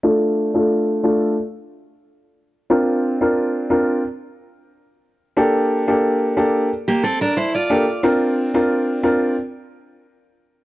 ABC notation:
X:1
M:4/4
L:1/16
Q:1/4=90
K:Dm
V:1 name="Steel-string acoustic guitar"
z16 | z16 | z8 z [B,G] [CA] [DB] [Ec] [Fd]3 | z16 |]
V:2 name="Grand piano"
[A,DFA]3 [A,DFA]3 [A,DFA]2 z8 | [CDFB]3 [CDFB]3 [CDFB]2 z8 | [B,DGA]3 [B,DGA]3 [B,DGA]2 z6 [B,DGA] z | [CDFB]3 [CDFB]3 [CDFB]2 z8 |]